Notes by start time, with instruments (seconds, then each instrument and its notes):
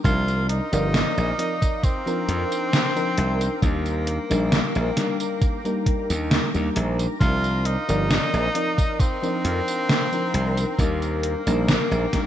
0.04 slap bass C2, fm electric piano F3 C4 D4 D#4 A#4, tenor saxophone F4, analog synth pad A#4 F5 A#5 D6, kick, closed hi-hat, tambourine
0.28 closed hi-hat, tambourine
0.49 tenor saxophone D#4, closed hi-hat
0.72 slap bass G1, fm electric piano F3 C4 D#4 A#4 D5, closed hi-hat, tambourine
0.94 snare, closed hi-hat, tambourine
1.17 slap bass A#1, closed hi-hat, tambourine
1.38 fm electric piano F3 C4 D#4 A#4 D5, closed hi-hat
1.62 kick, closed hi-hat, tambourine
1.83 tenor saxophone C4, kick, closed hi-hat, tambourine
2.06 fm electric piano F3 C4 D4 D#4 A#4, closed hi-hat, tambourine
2.29 slap bass F2, closed hi-hat
2.52 closed hi-hat, tambourine
2.73 snare, closed hi-hat, tambourine
2.95 fm electric piano F3 C4 D4 D#4 A#4, closed hi-hat, tambourine
3.18 slap bass C2, closed hi-hat
3.41 closed hi-hat, tambourine
3.61 slap bass D#2, fm electric piano G3 A#3 D4 D#4 A#4, tenor saxophone A#3, analog synth pad A#4 G5 D6, kick, closed hi-hat, tambourine
3.86 closed hi-hat, tambourine
4.07 closed hi-hat
4.30 slap bass A#1, fm electric piano G3 A#3 D4 D#4 A#4, closed hi-hat, tambourine
4.52 snare, closed hi-hat, tambourine
4.75 slap bass A#1, closed hi-hat, tambourine
4.96 fm electric piano G3 A#3 D4 D#4 A#4, snare, closed hi-hat
5.20 closed hi-hat, tambourine
5.41 kick, closed hi-hat, tambourine
5.64 fm electric piano G3 A#3 D4 D#4 A#4, closed hi-hat, tambourine
5.86 kick, closed hi-hat
6.10 slap bass D#2, closed hi-hat, tambourine
6.31 snare, closed hi-hat, tambourine
6.54 slap bass D#2, fm electric piano G3 A#3 D4 D#4 A#4, closed hi-hat, tambourine
6.76 slap bass A#1, closed hi-hat
6.99 closed hi-hat, tambourine
7.20 slap bass C2, fm electric piano F3 C4 D4 D#4 A#4, tenor saxophone F4, analog synth pad F5, kick, closed hi-hat, tambourine
7.44 closed hi-hat, tambourine
7.65 tenor saxophone D#4, closed hi-hat
7.88 slap bass G1, fm electric piano F3 C4 D#4 A#4 D5, closed hi-hat, tambourine
8.11 snare, closed hi-hat, tambourine
8.33 slap bass A#1, closed hi-hat, tambourine
8.54 fm electric piano F3 C4 D#4 A#4 D5, closed hi-hat
8.78 kick, closed hi-hat, tambourine
9.00 tenor saxophone C4, analog synth pad C6, kick, closed hi-hat, tambourine
9.22 fm electric piano F3 C4 D4 D#4 A#4, closed hi-hat, tambourine
9.45 slap bass F2, closed hi-hat
9.68 closed hi-hat, tambourine
9.89 snare, closed hi-hat, tambourine
10.12 fm electric piano F3 C4 D4 D#4 A#4, closed hi-hat, tambourine
10.34 slap bass C2, closed hi-hat
10.57 closed hi-hat, tambourine
10.78 slap bass D#2, fm electric piano G3 A#3 D4 D#4 A#4, tenor saxophone A#3, analog synth pad G5 D6, kick, closed hi-hat, tambourine
11.02 closed hi-hat, tambourine
11.23 closed hi-hat
11.46 slap bass A#1, fm electric piano G3 A#3 D4 D#4 A#4, closed hi-hat, tambourine
11.68 snare, closed hi-hat, tambourine
11.91 slap bass A#1, closed hi-hat, tambourine
12.12 fm electric piano G3 A#3 D4 D#4 A#4, kick, snare, closed hi-hat